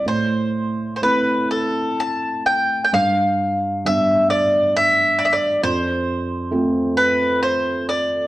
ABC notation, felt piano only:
X:1
M:3/4
L:1/8
Q:1/4=66
K:Gmix
V:1 name="Felt piano"
A,,2 [A,CE]4 | G,,2 [G,B,D]4 | F,,2 [A,CF]4 |]